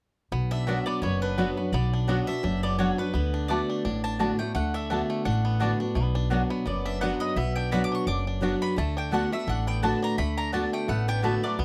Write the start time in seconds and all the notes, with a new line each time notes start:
0.32 B1 B2 B3
0.51 D4 E5
0.67 F#3 B3 D4 F#4 D5 F#5
0.86 B3 D5
1.02 F#1 F#2 B3 C#5
1.22 D4 B4
1.38 F#3 B3 D4 F#4 D5 F#5
1.57 B3 D4 F#4
1.72 B1 B2 B3 D5
1.94 D4
2.07 F#3 B3 D4 F#4 D5 F#5
2.27 D4 F#4 E5
2.43 F#1 F#2 D4
2.63 B3 D5
2.78 F#3 B3 D4 F#4 C#5 D5 F#5
2.98 B3 D4 F#4 B4
3.14 D2 D3 B3
3.34 D4
3.48 D3 A3 B3 F#4 D5 A5
3.70 D4
3.85 A1 A2 D4
4.04 D4 A5
4.19 D3 A3 B3 D4 F#4 D5 A5
4.39 A3 B3 F#4 G5
4.55 D2 D3 A3 F#5
4.74 D4 E5
4.90 D3 A3 B3 D4 F#4 D5 A5
5.10 A3
5.25 A1 A2 D4 F#5
5.45 B3
5.60 D3 A3 B3 D4 F#4 D5 A5
5.80 B3 D4 F#4
5.95 B1 B2 A3
6.03 B3
6.15 D4
6.30 F#3 B3 D4 F#4 D5 F#5
6.50 B3
6.66 F#1 F#2 B3 D5
6.85 D4 E5
7.01 F#3 B3 D4 F#4 D5 F#5
7.20 B3 D#5
7.36 B1 B2 B3 E5
7.56 D4 G5
7.71 F#3 B3 D4 F#4 D5 F#5 B5
7.84 D6
7.92 D4 C#6
8.07 F#1 F#2 D4 D6
8.27 D4
8.41 F#3 B3 D4 F#4 D5 F#5
8.62 B3 B5
8.76 D2 D3 A3 A5
8.97 D4 G5
9.11 D3 A3 B3 D4 F#4 D5 F#5 A5
9.32 A3 B3 F#4 E5
9.47 A1 A2 D4 F#5
9.67 B3 G5
9.82 D3 A3 B3 D4 F#4 D5 A5
10.02 D4 A#5
10.18 D2 D3 A3 B5
10.37 D4 A#5
10.52 D3 A3 B3 D4 F#4 D5 A5
10.73 A3 G5
10.88 A1 A2 A3 B3 F#5
11.08 B3 D4 G5
11.22 D3 A3 B3 F#4 D5 E5 A5
11.43 F#3 A3 B3 F#4 D5
11.59 B1 B2 B3